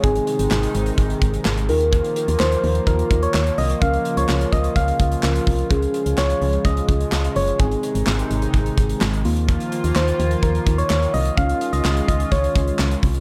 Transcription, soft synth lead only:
X:1
M:4/4
L:1/16
Q:1/4=127
K:Db
V:1 name="Soft synth lead"
A12 z4 | z4 c4 B3 d3 e2 | f3 d3 e2 f6 z2 | z4 d4 e6 d2 |
A12 z4 | z4 c4 B3 d3 e2 | f3 e3 e2 d6 z2 |]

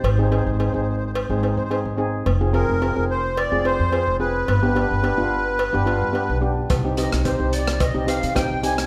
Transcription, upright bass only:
X:1
M:4/4
L:1/16
Q:1/4=108
K:Cm
V:1 name="Upright bass" clef=bass
A,,,3 A,,,2 A,,,4 A,,,2 A,,2 A,,,3 | F,,,3 F,,,2 F,,,4 F,,,2 F,,2 F,,,3 | G,,,3 G,,,2 G,,,4 G,,,2 G,,2 =B,,,3 | C,,3 C,,2 C,,4 C,,2 C,2 C,,3 |]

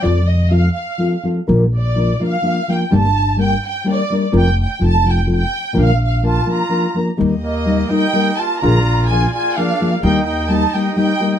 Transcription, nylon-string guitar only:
X:1
M:3/4
L:1/8
Q:1/4=126
K:Bb
V:1 name="Nylon-string guitar"
[F,CFA] z [F,CFA] z [F,CFA] [F,CFA] | [B,,D,F,B,DB] z [F,B,DB] [F,B,DB] [F,B,DB] [F,B,DB] | [G,,D,G,B,DB] z [G,B,DB] z [G,B,DB] [G,B,DB] | [F,CFB] z [F,CFA] [F,CFA] [F,CFA] z |
[B,,D,F,B,DB] z [F,B,DB] [F,B,DB] [F,B,DB] [F,B,DB] | [E,G,B,EB] z [G,B,EB] [G,B,EB] [G,B,EB] z | [B,,D,F,B,D_A] z [F,B,DA] z [F,B,DA] [F,B,DA] | [E,G,B,EG] z [G,B,EG] [G,B,EG] [G,B,EG] [G,B,EG] |]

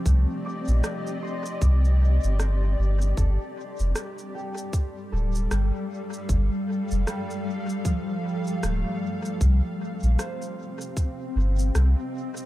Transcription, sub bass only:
X:1
M:4/4
L:1/16
Q:"Swing 16ths" 1/4=77
K:Cdor
V:1 name="Sub bass" clef=bass
C,, z2 B,,, z4 C,,3 G,,,3 G,,,2 | G,,, z2 F,,, z6 D,,,2 G,,, z3 | G,,, z2 F,,, z8 D,,, z3 | C,, z2 B,,, z6 G,,,2 C,, z3 |]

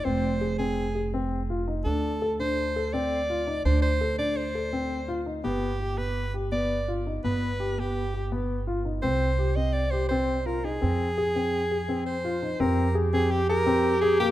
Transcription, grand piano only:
X:1
M:5/4
L:1/8
Q:1/4=167
K:Fdor
V:1 name="Grand piano"
C2 A C2 A C2 F E | D2 =A D2 A C2 F E | D2 =A D2 A C2 F E | =B,2 G B,2 G B,2 F E |
=B,2 G B,2 G B,2 F E | C2 G C2 G C2 F E | C2 A C2 A C2 F E | C2 A C2 A C2 A B, |]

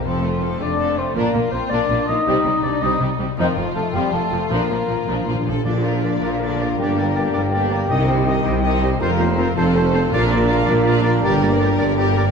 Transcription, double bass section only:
X:1
M:6/8
L:1/8
Q:3/8=108
K:Bb
V:1 name="Double bass section" clef=bass
F,,,3 F,,,3 | B,,, B,,, B,,, B,,, B,,, B,,, | C,, C,, C,, C,, C,, C,, | F,,, F,,, F,,, F,,, F,,, F,,, |
B,,, B,,, B,,, B,,, B,,, B,,, | B,,,3 B,,,3 | G,,,3 G,,,3 | C,,3 C,,3 |
F,,,3 F,,,3 | B,,,3 B,,,3 | G,,,3 G,,,3 |]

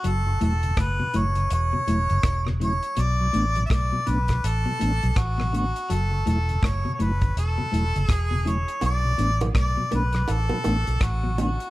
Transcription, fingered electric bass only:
X:1
M:4/4
L:1/16
Q:"Swing 16ths" 1/4=82
K:Bm
V:1 name="Fingered electric bass" clef=bass
F,,,2 E,,,2 F,,, z F,,,2 E,,, z E,,, F,,, E,,,3 z | B,,,2 A,,,2 B,,, z B,,,2 A,,, z A,,, B,,, A,,,3 z | F,,,2 E,,,2 F,,, z F,,,2 E,,, z E,,, F,,, E,,,3 z | B,,,2 A,,,2 B,,, z B,,,2 A,,, z A,,, B,,, A,,,3 z |]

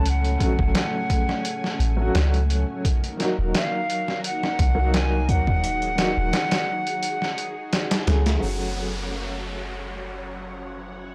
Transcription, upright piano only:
X:1
M:4/4
L:1/16
Q:"Swing 16ths" 1/4=86
K:F#m
V:1 name="Upright piano"
[F,A,CF]2 [F,A,CF]8- [F,A,CF] [F,A,CF]4- [F,A,CF] | z2 [F,^A,^DF]8- [F,A,DF] [F,A,DF]4- [F,A,DF]- | [F,^A,^DF]2 [F,A,DF]8- [F,A,DF] z3 [F,=A,CG]2 | [F,A,CF]16 |]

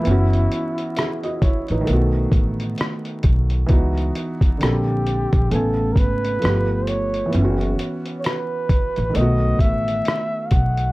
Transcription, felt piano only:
X:1
M:4/4
L:1/16
Q:"Swing 16ths" 1/4=66
K:F#dor
V:1 name="Felt piano"
z4 [Ge] [Fd] [Ec] [DB]2 z6 z | z16 | z16 |]
V:2 name="Felt piano"
[E,B,CF]8 [D,A,B,F]8 | [E,B,DF]4 [=D,^A,^B,=A]4 [C,=A,=B,g]4 [=F,A,B,=G]4 | [E,B,CEF]8 [D,A,B,F]8 |]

